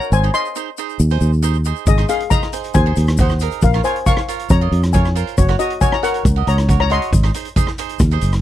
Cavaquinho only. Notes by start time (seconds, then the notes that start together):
Already playing: D#4 F#4 A#4
0.24 D#4 G#4 C5
0.34 D#4 G#4 C5
0.56 D#4 G#4 C5
0.78 D#4 G#4 C5
1.11 D#4 G#4 C5
1.43 D#4 G#4 C5
1.66 D#4 G#4 C5
1.98 D#4 G#4 C5
2.09 D#4 G#4 D#5
2.31 D#4 G#4 C5
2.53 D#4 G#4 C5
2.86 D#4 G#4 C5
3.20 D#4 G#4 C5
3.41 D#4 G#4 A#4
3.74 F4 A#4 C#5
3.85 F4 A#4 C#5
4.07 F4 A#4 C#5
4.28 F4 A#4 C#5
4.61 F4 A#4 D#5
4.94 F4 A#4 C#5
5.15 F4 A#4 C5
5.49 F#4 A#4 C#5
5.59 F#4 A#4 C#5
5.82 F#4 A#4 C#5
6.03 F#4 A#4 C#5
6.36 F#4 A#4 D#5
6.68 F#4 A#4 C#5
6.90 F#4 A#4 C#5
7.23 D#4 G#4 C5
7.35 D#4 G#4 C5
7.56 D#4 G#4 C5
7.79 D#4 G#4 C5
8.11 D#4 G#4 C5